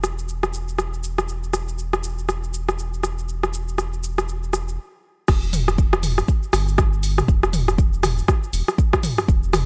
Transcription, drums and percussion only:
0.04 cross-stick, shaker
0.19 shaker
0.29 shaker
0.43 cross-stick, shaker
0.54 shaker
0.68 shaker
0.79 cross-stick, shaker
0.94 shaker
1.04 shaker
1.18 cross-stick, shaker
1.28 shaker
1.44 shaker
1.53 cross-stick, shaker
1.68 shaker
1.79 shaker
1.93 cross-stick, shaker
2.04 shaker
2.19 shaker
2.29 cross-stick, shaker
2.44 shaker
2.54 shaker
2.69 cross-stick, shaker
2.79 shaker
2.94 shaker
3.03 cross-stick, shaker
3.19 shaker
3.29 shaker
3.43 cross-stick, shaker
3.54 shaker
3.68 shaker
3.78 cross-stick, shaker
3.93 shaker
4.04 shaker
4.18 cross-stick, shaker
4.29 shaker
4.43 shaker
4.53 cross-stick, shaker
4.68 shaker
5.28 kick, cross-stick, crash, shaker
5.43 shaker
5.53 mid tom, open hi-hat, shaker
5.68 cross-stick, shaker
5.78 kick, shaker
5.93 cross-stick, shaker
6.03 mid tom, open hi-hat, shaker
6.18 cross-stick, shaker
6.28 kick, shaker
6.43 shaker
6.53 cross-stick, open hi-hat, shaker
6.68 shaker
6.78 kick, cross-stick, shaker
6.93 shaker
7.03 open hi-hat, shaker
7.18 cross-stick, mid tom, shaker
7.28 kick, shaker
7.43 cross-stick, shaker
7.53 mid tom, open hi-hat, shaker
7.68 cross-stick, shaker
7.78 kick, shaker
7.93 shaker
8.03 cross-stick, mid tom, open hi-hat, shaker
8.18 shaker
8.28 kick, cross-stick, shaker
8.43 shaker
8.53 open hi-hat, shaker
8.68 cross-stick, shaker
8.78 kick, shaker
8.93 kick, cross-stick, shaker
9.03 mid tom, open hi-hat, shaker
9.18 cross-stick, shaker
9.28 kick, shaker
9.43 shaker
9.53 cross-stick, mid tom, open hi-hat, shaker

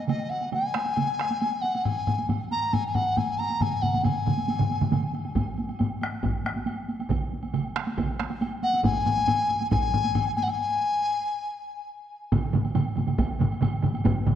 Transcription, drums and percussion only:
0.08 taiko mid, taiko high, high woodblock
0.31 taiko high, high woodblock
0.42 taiko high, high woodblock
0.52 taiko mid, taiko high, high woodblock
0.74 taiko rim, taiko high, high woodblock
0.85 taiko high, high woodblock
0.96 taiko mid, taiko high, high woodblock
1.19 taiko rim, taiko high, high woodblock
1.30 taiko high, high woodblock
1.40 taiko high, high woodblock
1.63 taiko high, high woodblock
1.75 taiko high, high woodblock
1.85 taiko low-mid, taiko high, high woodblock
2.07 taiko low-mid, taiko high, high woodblock
2.18 taiko high, high woodblock
2.29 taiko low-mid, taiko high, high woodblock
2.52 taiko high, high woodblock
2.62 high woodblock
2.73 taiko low-mid, taiko high, high woodblock
2.95 taiko low-mid, taiko high, high woodblock
3.06 high woodblock
3.17 taiko low-mid, taiko high, high woodblock
3.39 taiko high, high woodblock
3.50 taiko high, high woodblock
3.61 taiko low-mid, taiko mid, taiko high, high woodblock
3.83 taiko low-mid, taiko mid, taiko high, high woodblock
3.93 taiko low-mid, taiko mid, taiko high, high woodblock
4.04 taiko low-mid, taiko mid, taiko high, high woodblock
4.26 taiko low-mid, taiko mid, taiko high, high woodblock
4.37 taiko high, high woodblock
4.48 taiko high, high woodblock
4.59 taiko low-mid, taiko mid
4.70 taiko high, high woodblock
4.81 taiko low-mid, taiko mid, taiko high, high woodblock
4.92 taiko low-mid, taiko mid, taiko high, high woodblock
5.14 taiko high, high woodblock
5.25 taiko high, high woodblock
5.35 taiko, taiko low-mid, taiko high, high woodblock
5.58 taiko high, high woodblock
5.69 taiko high, high woodblock
5.79 taiko low-mid, taiko high, high woodblock
6.01 taiko rim, taiko high, high woodblock
6.12 high woodblock
6.23 taiko, taiko low-mid, taiko high, high woodblock
6.45 taiko rim, taiko high, high woodblock
6.56 taiko high, high woodblock
6.66 taiko high, high woodblock
6.88 taiko high, high woodblock
7.00 taiko high, high woodblock
7.10 taiko, taiko mid, taiko high, high woodblock
7.32 taiko high
7.43 taiko high, high woodblock
7.54 taiko mid, taiko high, high woodblock
7.76 taiko rim, taiko high, high woodblock
7.87 taiko high, high woodblock
7.97 taiko, taiko mid, taiko high, high woodblock
8.20 taiko rim, taiko high, high woodblock
8.30 taiko high, high woodblock
8.41 taiko high, high woodblock
8.63 taiko high, high woodblock
8.74 taiko high, high woodblock
8.84 taiko, taiko low-mid, taiko high, high woodblock
9.06 taiko low-mid, taiko high, high woodblock
9.18 taiko high, high woodblock
9.28 taiko low-mid, taiko high, high woodblock
9.49 taiko high, high woodblock
9.60 taiko high, high woodblock
9.71 taiko, taiko low-mid, taiko high, high woodblock
9.94 taiko low-mid, taiko high
10.04 taiko high, high woodblock
10.15 taiko low-mid, taiko high, high woodblock
10.37 taiko high, high woodblock
10.48 taiko high, high woodblock
12.32 taiko, taiko low-mid, taiko mid, taiko high, high woodblock
12.53 taiko low-mid, taiko mid, taiko high, high woodblock
12.65 taiko high, high woodblock
12.75 taiko low-mid, taiko mid, taiko high, high woodblock
12.96 taiko low-mid, taiko mid, taiko high, high woodblock
13.07 taiko low-mid, taiko mid, taiko high, high woodblock
13.18 taiko, taiko high, high woodblock
13.39 taiko low-mid, taiko mid, taiko high, high woodblock
13.52 high woodblock
13.61 taiko low-mid, taiko mid, taiko high, high woodblock
13.83 taiko low-mid, taiko mid, taiko high, high woodblock
13.94 taiko high, high woodblock
14.04 taiko, taiko low-mid, taiko mid, taiko high, high woodblock
14.26 taiko low-mid, taiko mid, taiko high, high woodblock

